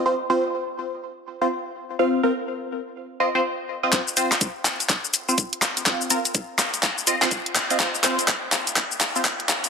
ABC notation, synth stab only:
X:1
M:4/4
L:1/16
Q:"Swing 16ths" 1/4=124
K:Cphr
V:1 name="Synth stab"
[CFc] z [CFc] z8 [CFc] z4 | [CFf]2 [CFB] z6 z [CFe] [CFc] z3 [CFe] | [CFc] z [CFc] z8 [CFc] z4 | [CFf]2 [CFB] z6 z [CFe] [CFc] z3 [CFe] |
[CFc] z [CFc] z8 [CFc] z4 |]